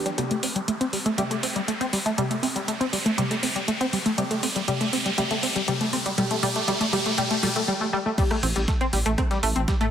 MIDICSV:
0, 0, Header, 1, 6, 480
1, 0, Start_track
1, 0, Key_signature, 0, "minor"
1, 0, Tempo, 500000
1, 174, Time_signature, 4, 2, 24, 8
1, 9512, End_track
2, 0, Start_track
2, 0, Title_t, "Synth arpeggio sound"
2, 0, Program_c, 0, 84
2, 55, Note_on_c, 0, 55, 95
2, 103, Note_off_c, 0, 55, 0
2, 173, Note_on_c, 0, 55, 96
2, 223, Note_off_c, 0, 55, 0
2, 296, Note_on_c, 0, 57, 70
2, 344, Note_off_c, 0, 57, 0
2, 412, Note_on_c, 0, 60, 72
2, 443, Note_off_c, 0, 60, 0
2, 535, Note_on_c, 0, 55, 69
2, 583, Note_off_c, 0, 55, 0
2, 652, Note_on_c, 0, 57, 75
2, 683, Note_off_c, 0, 57, 0
2, 774, Note_on_c, 0, 60, 89
2, 823, Note_off_c, 0, 60, 0
2, 892, Note_on_c, 0, 55, 69
2, 943, Note_off_c, 0, 55, 0
2, 1015, Note_on_c, 0, 57, 95
2, 1063, Note_off_c, 0, 57, 0
2, 1132, Note_on_c, 0, 55, 99
2, 1183, Note_off_c, 0, 55, 0
2, 1255, Note_on_c, 0, 57, 68
2, 1303, Note_off_c, 0, 57, 0
2, 1373, Note_on_c, 0, 60, 73
2, 1403, Note_off_c, 0, 60, 0
2, 1496, Note_on_c, 0, 55, 68
2, 1544, Note_off_c, 0, 55, 0
2, 1613, Note_on_c, 0, 57, 77
2, 1643, Note_off_c, 0, 57, 0
2, 1736, Note_on_c, 0, 60, 93
2, 1784, Note_off_c, 0, 60, 0
2, 1853, Note_on_c, 0, 55, 74
2, 1903, Note_off_c, 0, 55, 0
2, 1975, Note_on_c, 0, 57, 92
2, 2023, Note_off_c, 0, 57, 0
2, 2092, Note_on_c, 0, 55, 99
2, 2143, Note_off_c, 0, 55, 0
2, 2214, Note_on_c, 0, 57, 71
2, 2263, Note_off_c, 0, 57, 0
2, 2331, Note_on_c, 0, 60, 75
2, 2362, Note_off_c, 0, 60, 0
2, 2455, Note_on_c, 0, 55, 74
2, 2503, Note_off_c, 0, 55, 0
2, 2572, Note_on_c, 0, 57, 79
2, 2602, Note_off_c, 0, 57, 0
2, 2694, Note_on_c, 0, 60, 98
2, 2743, Note_off_c, 0, 60, 0
2, 2811, Note_on_c, 0, 55, 70
2, 2862, Note_off_c, 0, 55, 0
2, 2934, Note_on_c, 0, 57, 92
2, 2983, Note_off_c, 0, 57, 0
2, 3051, Note_on_c, 0, 55, 101
2, 3102, Note_off_c, 0, 55, 0
2, 3174, Note_on_c, 0, 57, 71
2, 3223, Note_off_c, 0, 57, 0
2, 3292, Note_on_c, 0, 60, 71
2, 3323, Note_off_c, 0, 60, 0
2, 3415, Note_on_c, 0, 55, 76
2, 3463, Note_off_c, 0, 55, 0
2, 3533, Note_on_c, 0, 57, 82
2, 3563, Note_off_c, 0, 57, 0
2, 3655, Note_on_c, 0, 60, 100
2, 3703, Note_off_c, 0, 60, 0
2, 3773, Note_on_c, 0, 55, 74
2, 3823, Note_off_c, 0, 55, 0
2, 3895, Note_on_c, 0, 57, 94
2, 3943, Note_off_c, 0, 57, 0
2, 4012, Note_on_c, 0, 55, 100
2, 4063, Note_off_c, 0, 55, 0
2, 4135, Note_on_c, 0, 57, 76
2, 4183, Note_off_c, 0, 57, 0
2, 4253, Note_on_c, 0, 60, 81
2, 4283, Note_off_c, 0, 60, 0
2, 4375, Note_on_c, 0, 55, 75
2, 4423, Note_off_c, 0, 55, 0
2, 4492, Note_on_c, 0, 55, 105
2, 4543, Note_off_c, 0, 55, 0
2, 4615, Note_on_c, 0, 57, 80
2, 4663, Note_off_c, 0, 57, 0
2, 4733, Note_on_c, 0, 60, 78
2, 4763, Note_off_c, 0, 60, 0
2, 4855, Note_on_c, 0, 55, 76
2, 4903, Note_off_c, 0, 55, 0
2, 4972, Note_on_c, 0, 55, 105
2, 5023, Note_off_c, 0, 55, 0
2, 5096, Note_on_c, 0, 57, 77
2, 5144, Note_off_c, 0, 57, 0
2, 5213, Note_on_c, 0, 60, 73
2, 5243, Note_off_c, 0, 60, 0
2, 5335, Note_on_c, 0, 55, 80
2, 5383, Note_off_c, 0, 55, 0
2, 5452, Note_on_c, 0, 55, 97
2, 5503, Note_off_c, 0, 55, 0
2, 5576, Note_on_c, 0, 57, 78
2, 5624, Note_off_c, 0, 57, 0
2, 5693, Note_on_c, 0, 60, 77
2, 5723, Note_off_c, 0, 60, 0
2, 5815, Note_on_c, 0, 55, 73
2, 5863, Note_off_c, 0, 55, 0
2, 5933, Note_on_c, 0, 55, 108
2, 5983, Note_off_c, 0, 55, 0
2, 6056, Note_on_c, 0, 57, 81
2, 6104, Note_off_c, 0, 57, 0
2, 6172, Note_on_c, 0, 55, 107
2, 6223, Note_off_c, 0, 55, 0
2, 6295, Note_on_c, 0, 57, 81
2, 6343, Note_off_c, 0, 57, 0
2, 6412, Note_on_c, 0, 55, 102
2, 6463, Note_off_c, 0, 55, 0
2, 6535, Note_on_c, 0, 57, 83
2, 6583, Note_off_c, 0, 57, 0
2, 6653, Note_on_c, 0, 55, 104
2, 6703, Note_off_c, 0, 55, 0
2, 6776, Note_on_c, 0, 57, 81
2, 6824, Note_off_c, 0, 57, 0
2, 6893, Note_on_c, 0, 55, 111
2, 6943, Note_off_c, 0, 55, 0
2, 7016, Note_on_c, 0, 57, 81
2, 7064, Note_off_c, 0, 57, 0
2, 7133, Note_on_c, 0, 55, 105
2, 7183, Note_off_c, 0, 55, 0
2, 7257, Note_on_c, 0, 57, 81
2, 7304, Note_off_c, 0, 57, 0
2, 7374, Note_on_c, 0, 55, 107
2, 7424, Note_off_c, 0, 55, 0
2, 7497, Note_on_c, 0, 57, 78
2, 7544, Note_off_c, 0, 57, 0
2, 7614, Note_on_c, 0, 55, 113
2, 7663, Note_off_c, 0, 55, 0
2, 7737, Note_on_c, 0, 57, 76
2, 7784, Note_off_c, 0, 57, 0
2, 7853, Note_on_c, 0, 55, 101
2, 7903, Note_off_c, 0, 55, 0
2, 7976, Note_on_c, 0, 57, 80
2, 8024, Note_off_c, 0, 57, 0
2, 8093, Note_on_c, 0, 60, 80
2, 8123, Note_off_c, 0, 60, 0
2, 8216, Note_on_c, 0, 55, 74
2, 8264, Note_off_c, 0, 55, 0
2, 8333, Note_on_c, 0, 57, 83
2, 8363, Note_off_c, 0, 57, 0
2, 8456, Note_on_c, 0, 60, 99
2, 8504, Note_off_c, 0, 60, 0
2, 8573, Note_on_c, 0, 55, 72
2, 8623, Note_off_c, 0, 55, 0
2, 8696, Note_on_c, 0, 57, 100
2, 8744, Note_off_c, 0, 57, 0
2, 8812, Note_on_c, 0, 60, 105
2, 8843, Note_off_c, 0, 60, 0
2, 8936, Note_on_c, 0, 55, 73
2, 9007, Note_off_c, 0, 55, 0
2, 9053, Note_on_c, 0, 57, 98
2, 9103, Note_off_c, 0, 57, 0
2, 9175, Note_on_c, 0, 60, 76
2, 9223, Note_off_c, 0, 60, 0
2, 9292, Note_on_c, 0, 55, 85
2, 9343, Note_off_c, 0, 55, 0
2, 9415, Note_on_c, 0, 57, 101
2, 9463, Note_off_c, 0, 57, 0
2, 9512, End_track
3, 0, Start_track
3, 0, Title_t, "Synth stab"
3, 0, Program_c, 1, 62
3, 0, Note_on_c, 1, 52, 81
3, 0, Note_on_c, 1, 62, 75
3, 0, Note_on_c, 1, 67, 93
3, 145, Note_off_c, 1, 52, 0
3, 145, Note_off_c, 1, 67, 0
3, 146, Note_off_c, 1, 62, 0
3, 174, Note_on_c, 1, 48, 73
3, 174, Note_on_c, 1, 57, 64
3, 174, Note_on_c, 1, 67, 73
3, 375, Note_off_c, 1, 48, 0
3, 375, Note_off_c, 1, 57, 0
3, 375, Note_off_c, 1, 67, 0
3, 1134, Note_on_c, 1, 48, 74
3, 1134, Note_on_c, 1, 57, 72
3, 1134, Note_on_c, 1, 67, 79
3, 1335, Note_off_c, 1, 67, 0
3, 1336, Note_off_c, 1, 48, 0
3, 1336, Note_off_c, 1, 57, 0
3, 2093, Note_on_c, 1, 57, 65
3, 2093, Note_on_c, 1, 67, 79
3, 2094, Note_on_c, 1, 48, 73
3, 2295, Note_off_c, 1, 48, 0
3, 2295, Note_off_c, 1, 57, 0
3, 2295, Note_off_c, 1, 67, 0
3, 3053, Note_on_c, 1, 67, 90
3, 3054, Note_on_c, 1, 48, 77
3, 3054, Note_on_c, 1, 57, 72
3, 3255, Note_off_c, 1, 48, 0
3, 3255, Note_off_c, 1, 57, 0
3, 3255, Note_off_c, 1, 67, 0
3, 4013, Note_on_c, 1, 48, 77
3, 4013, Note_on_c, 1, 57, 66
3, 4013, Note_on_c, 1, 67, 89
3, 4215, Note_off_c, 1, 48, 0
3, 4215, Note_off_c, 1, 57, 0
3, 4215, Note_off_c, 1, 67, 0
3, 4493, Note_on_c, 1, 48, 76
3, 4493, Note_on_c, 1, 57, 73
3, 4493, Note_on_c, 1, 67, 85
3, 4695, Note_off_c, 1, 48, 0
3, 4695, Note_off_c, 1, 57, 0
3, 4695, Note_off_c, 1, 67, 0
3, 4974, Note_on_c, 1, 48, 83
3, 4974, Note_on_c, 1, 57, 74
3, 4974, Note_on_c, 1, 67, 90
3, 5175, Note_off_c, 1, 48, 0
3, 5175, Note_off_c, 1, 57, 0
3, 5175, Note_off_c, 1, 67, 0
3, 5452, Note_on_c, 1, 48, 78
3, 5453, Note_on_c, 1, 57, 73
3, 5453, Note_on_c, 1, 67, 87
3, 5654, Note_off_c, 1, 48, 0
3, 5655, Note_off_c, 1, 57, 0
3, 5655, Note_off_c, 1, 67, 0
3, 5931, Note_on_c, 1, 47, 81
3, 5931, Note_on_c, 1, 57, 74
3, 5931, Note_on_c, 1, 67, 89
3, 6134, Note_off_c, 1, 47, 0
3, 6134, Note_off_c, 1, 57, 0
3, 6134, Note_off_c, 1, 67, 0
3, 6171, Note_on_c, 1, 67, 94
3, 6172, Note_on_c, 1, 47, 88
3, 6172, Note_on_c, 1, 57, 81
3, 6374, Note_off_c, 1, 47, 0
3, 6374, Note_off_c, 1, 57, 0
3, 6374, Note_off_c, 1, 67, 0
3, 6410, Note_on_c, 1, 57, 74
3, 6411, Note_on_c, 1, 47, 81
3, 6411, Note_on_c, 1, 67, 86
3, 6613, Note_off_c, 1, 57, 0
3, 6614, Note_off_c, 1, 47, 0
3, 6614, Note_off_c, 1, 67, 0
3, 6652, Note_on_c, 1, 47, 84
3, 6652, Note_on_c, 1, 67, 91
3, 6653, Note_on_c, 1, 57, 78
3, 6854, Note_off_c, 1, 47, 0
3, 6854, Note_off_c, 1, 67, 0
3, 6855, Note_off_c, 1, 57, 0
3, 6892, Note_on_c, 1, 47, 81
3, 6892, Note_on_c, 1, 57, 73
3, 6893, Note_on_c, 1, 67, 93
3, 7094, Note_off_c, 1, 57, 0
3, 7095, Note_off_c, 1, 47, 0
3, 7095, Note_off_c, 1, 67, 0
3, 7132, Note_on_c, 1, 47, 84
3, 7132, Note_on_c, 1, 67, 94
3, 7133, Note_on_c, 1, 57, 79
3, 7334, Note_off_c, 1, 67, 0
3, 7335, Note_off_c, 1, 47, 0
3, 7335, Note_off_c, 1, 57, 0
3, 7853, Note_on_c, 1, 48, 76
3, 7853, Note_on_c, 1, 57, 69
3, 7853, Note_on_c, 1, 67, 89
3, 8055, Note_off_c, 1, 48, 0
3, 8055, Note_off_c, 1, 57, 0
3, 8055, Note_off_c, 1, 67, 0
3, 9512, End_track
4, 0, Start_track
4, 0, Title_t, "Detuned saw bass"
4, 0, Program_c, 2, 39
4, 8091, Note_on_c, 2, 33, 100
4, 8188, Note_off_c, 2, 33, 0
4, 8215, Note_on_c, 2, 33, 84
4, 8307, Note_off_c, 2, 33, 0
4, 8572, Note_on_c, 2, 33, 92
4, 8668, Note_off_c, 2, 33, 0
4, 8694, Note_on_c, 2, 33, 77
4, 8786, Note_off_c, 2, 33, 0
4, 9052, Note_on_c, 2, 33, 93
4, 9148, Note_off_c, 2, 33, 0
4, 9174, Note_on_c, 2, 33, 81
4, 9267, Note_off_c, 2, 33, 0
4, 9414, Note_on_c, 2, 33, 75
4, 9507, Note_off_c, 2, 33, 0
4, 9512, End_track
5, 0, Start_track
5, 0, Title_t, "Riser"
5, 0, Program_c, 3, 103
5, 0, Note_on_c, 3, 60, 79
5, 7373, Note_off_c, 3, 60, 0
5, 9512, End_track
6, 0, Start_track
6, 0, Title_t, "Drums"
6, 56, Note_on_c, 9, 42, 42
6, 152, Note_off_c, 9, 42, 0
6, 173, Note_on_c, 9, 42, 74
6, 269, Note_off_c, 9, 42, 0
6, 296, Note_on_c, 9, 42, 42
6, 392, Note_off_c, 9, 42, 0
6, 412, Note_on_c, 9, 46, 103
6, 508, Note_off_c, 9, 46, 0
6, 536, Note_on_c, 9, 42, 43
6, 632, Note_off_c, 9, 42, 0
6, 653, Note_on_c, 9, 42, 70
6, 749, Note_off_c, 9, 42, 0
6, 776, Note_on_c, 9, 42, 41
6, 872, Note_off_c, 9, 42, 0
6, 893, Note_on_c, 9, 46, 91
6, 989, Note_off_c, 9, 46, 0
6, 1016, Note_on_c, 9, 42, 40
6, 1112, Note_off_c, 9, 42, 0
6, 1134, Note_on_c, 9, 42, 80
6, 1230, Note_off_c, 9, 42, 0
6, 1257, Note_on_c, 9, 42, 44
6, 1353, Note_off_c, 9, 42, 0
6, 1374, Note_on_c, 9, 46, 108
6, 1470, Note_off_c, 9, 46, 0
6, 1497, Note_on_c, 9, 42, 42
6, 1593, Note_off_c, 9, 42, 0
6, 1615, Note_on_c, 9, 42, 72
6, 1711, Note_off_c, 9, 42, 0
6, 1737, Note_on_c, 9, 42, 41
6, 1833, Note_off_c, 9, 42, 0
6, 1854, Note_on_c, 9, 46, 96
6, 1950, Note_off_c, 9, 46, 0
6, 1977, Note_on_c, 9, 42, 44
6, 2073, Note_off_c, 9, 42, 0
6, 2094, Note_on_c, 9, 42, 76
6, 2190, Note_off_c, 9, 42, 0
6, 2216, Note_on_c, 9, 42, 43
6, 2312, Note_off_c, 9, 42, 0
6, 2333, Note_on_c, 9, 46, 99
6, 2429, Note_off_c, 9, 46, 0
6, 2457, Note_on_c, 9, 42, 41
6, 2553, Note_off_c, 9, 42, 0
6, 2575, Note_on_c, 9, 42, 75
6, 2671, Note_off_c, 9, 42, 0
6, 2697, Note_on_c, 9, 42, 42
6, 2793, Note_off_c, 9, 42, 0
6, 2813, Note_on_c, 9, 46, 87
6, 2909, Note_off_c, 9, 46, 0
6, 2937, Note_on_c, 9, 42, 44
6, 3033, Note_off_c, 9, 42, 0
6, 3054, Note_on_c, 9, 42, 76
6, 3150, Note_off_c, 9, 42, 0
6, 3177, Note_on_c, 9, 42, 44
6, 3273, Note_off_c, 9, 42, 0
6, 3293, Note_on_c, 9, 46, 102
6, 3389, Note_off_c, 9, 46, 0
6, 3417, Note_on_c, 9, 42, 45
6, 3513, Note_off_c, 9, 42, 0
6, 3534, Note_on_c, 9, 42, 73
6, 3630, Note_off_c, 9, 42, 0
6, 3657, Note_on_c, 9, 42, 42
6, 3753, Note_off_c, 9, 42, 0
6, 3773, Note_on_c, 9, 46, 89
6, 3869, Note_off_c, 9, 46, 0
6, 3896, Note_on_c, 9, 42, 42
6, 3992, Note_off_c, 9, 42, 0
6, 4014, Note_on_c, 9, 42, 75
6, 4110, Note_off_c, 9, 42, 0
6, 4136, Note_on_c, 9, 42, 43
6, 4232, Note_off_c, 9, 42, 0
6, 4253, Note_on_c, 9, 46, 97
6, 4349, Note_off_c, 9, 46, 0
6, 4375, Note_on_c, 9, 42, 42
6, 4471, Note_off_c, 9, 42, 0
6, 4493, Note_on_c, 9, 42, 77
6, 4589, Note_off_c, 9, 42, 0
6, 4616, Note_on_c, 9, 42, 43
6, 4712, Note_off_c, 9, 42, 0
6, 4733, Note_on_c, 9, 46, 89
6, 4829, Note_off_c, 9, 46, 0
6, 4855, Note_on_c, 9, 42, 44
6, 4951, Note_off_c, 9, 42, 0
6, 4973, Note_on_c, 9, 42, 80
6, 5069, Note_off_c, 9, 42, 0
6, 5095, Note_on_c, 9, 42, 44
6, 5191, Note_off_c, 9, 42, 0
6, 5213, Note_on_c, 9, 46, 101
6, 5309, Note_off_c, 9, 46, 0
6, 5336, Note_on_c, 9, 42, 45
6, 5432, Note_off_c, 9, 42, 0
6, 5453, Note_on_c, 9, 42, 79
6, 5549, Note_off_c, 9, 42, 0
6, 5576, Note_on_c, 9, 42, 42
6, 5672, Note_off_c, 9, 42, 0
6, 5693, Note_on_c, 9, 46, 91
6, 5789, Note_off_c, 9, 46, 0
6, 5816, Note_on_c, 9, 42, 45
6, 5912, Note_off_c, 9, 42, 0
6, 5933, Note_on_c, 9, 42, 81
6, 6029, Note_off_c, 9, 42, 0
6, 6055, Note_on_c, 9, 42, 47
6, 6151, Note_off_c, 9, 42, 0
6, 6173, Note_on_c, 9, 46, 101
6, 6269, Note_off_c, 9, 46, 0
6, 6295, Note_on_c, 9, 42, 46
6, 6391, Note_off_c, 9, 42, 0
6, 6412, Note_on_c, 9, 42, 81
6, 6508, Note_off_c, 9, 42, 0
6, 6535, Note_on_c, 9, 42, 45
6, 6631, Note_off_c, 9, 42, 0
6, 6653, Note_on_c, 9, 46, 90
6, 6749, Note_off_c, 9, 46, 0
6, 6775, Note_on_c, 9, 42, 46
6, 6871, Note_off_c, 9, 42, 0
6, 6892, Note_on_c, 9, 42, 85
6, 6988, Note_off_c, 9, 42, 0
6, 7015, Note_on_c, 9, 42, 46
6, 7111, Note_off_c, 9, 42, 0
6, 7133, Note_on_c, 9, 46, 100
6, 7229, Note_off_c, 9, 46, 0
6, 7256, Note_on_c, 9, 42, 49
6, 7352, Note_off_c, 9, 42, 0
6, 7853, Note_on_c, 9, 36, 125
6, 7853, Note_on_c, 9, 42, 87
6, 7853, Note_on_c, 9, 49, 103
6, 7949, Note_off_c, 9, 36, 0
6, 7949, Note_off_c, 9, 42, 0
6, 7949, Note_off_c, 9, 49, 0
6, 7976, Note_on_c, 9, 38, 53
6, 7977, Note_on_c, 9, 37, 57
6, 7977, Note_on_c, 9, 42, 46
6, 8072, Note_off_c, 9, 38, 0
6, 8073, Note_off_c, 9, 37, 0
6, 8073, Note_off_c, 9, 42, 0
6, 8092, Note_on_c, 9, 38, 53
6, 8092, Note_on_c, 9, 42, 67
6, 8093, Note_on_c, 9, 46, 108
6, 8188, Note_off_c, 9, 38, 0
6, 8188, Note_off_c, 9, 42, 0
6, 8189, Note_off_c, 9, 46, 0
6, 8216, Note_on_c, 9, 38, 55
6, 8216, Note_on_c, 9, 42, 45
6, 8312, Note_off_c, 9, 38, 0
6, 8312, Note_off_c, 9, 42, 0
6, 8333, Note_on_c, 9, 36, 124
6, 8333, Note_on_c, 9, 38, 120
6, 8333, Note_on_c, 9, 42, 81
6, 8429, Note_off_c, 9, 36, 0
6, 8429, Note_off_c, 9, 38, 0
6, 8429, Note_off_c, 9, 42, 0
6, 8456, Note_on_c, 9, 42, 46
6, 8552, Note_off_c, 9, 42, 0
6, 8572, Note_on_c, 9, 46, 96
6, 8573, Note_on_c, 9, 42, 71
6, 8668, Note_off_c, 9, 46, 0
6, 8669, Note_off_c, 9, 42, 0
6, 8695, Note_on_c, 9, 42, 47
6, 8791, Note_off_c, 9, 42, 0
6, 8813, Note_on_c, 9, 36, 116
6, 8813, Note_on_c, 9, 37, 57
6, 8813, Note_on_c, 9, 42, 84
6, 8909, Note_off_c, 9, 36, 0
6, 8909, Note_off_c, 9, 37, 0
6, 8909, Note_off_c, 9, 42, 0
6, 8936, Note_on_c, 9, 38, 60
6, 8936, Note_on_c, 9, 42, 47
6, 9032, Note_off_c, 9, 38, 0
6, 9032, Note_off_c, 9, 42, 0
6, 9052, Note_on_c, 9, 46, 108
6, 9053, Note_on_c, 9, 42, 69
6, 9148, Note_off_c, 9, 46, 0
6, 9149, Note_off_c, 9, 42, 0
6, 9176, Note_on_c, 9, 42, 49
6, 9272, Note_off_c, 9, 42, 0
6, 9292, Note_on_c, 9, 42, 79
6, 9293, Note_off_c, 9, 42, 0
6, 9293, Note_on_c, 9, 36, 119
6, 9293, Note_on_c, 9, 38, 117
6, 9293, Note_on_c, 9, 42, 87
6, 9389, Note_off_c, 9, 36, 0
6, 9389, Note_off_c, 9, 38, 0
6, 9389, Note_off_c, 9, 42, 0
6, 9415, Note_on_c, 9, 42, 49
6, 9511, Note_off_c, 9, 42, 0
6, 9512, End_track
0, 0, End_of_file